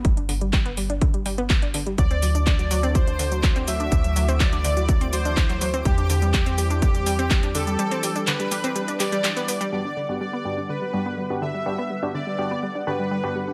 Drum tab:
HH |xxoxxxoxxxoxxxox|xxoxxxoxxxoxxxox|xxoxxxoxxxoxxxox|xxoxxxoxxxoxxxox|
SH |----------------|xxxxxxxxxxxxxxxx|xxxxxxxxxxxxxxxx|xxxxxxxxxxxxxxxx|
CP |----x-------x---|----x-------x---|----x-------x---|----x-------x---|
BD |o---o---o---o---|o---o---o---o---|o---o---o---o---|o---o---o---o---|

HH |xxoxxxoxxxoxxxox|--------------o-|--o-------o---o-|
SH |xxxxxxxxxxxxxxxx|----------------|----------------|
CP |----x-----x-x---|----------------|----------------|
BD |----------------|----------------|----------------|